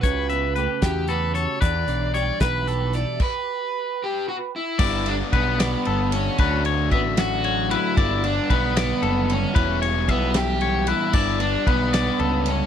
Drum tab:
CC |------|------|x-----|x-----|
RD |------|------|------|-xxxxx|
HH |xxxxxx|xxxxxx|------|------|
SD |---o--|---o--|------|---o--|
BD |o--o--|o--o--|o-----|o-o---|

CC |------|------|------|x-----|
RD |xxxxxx|xxxxxx|xxxxxx|-xxxxx|
HH |------|------|------|------|
SD |---o--|---o--|---o--|---o--|
BD |o-o---|o-o---|o-o---|o-o---|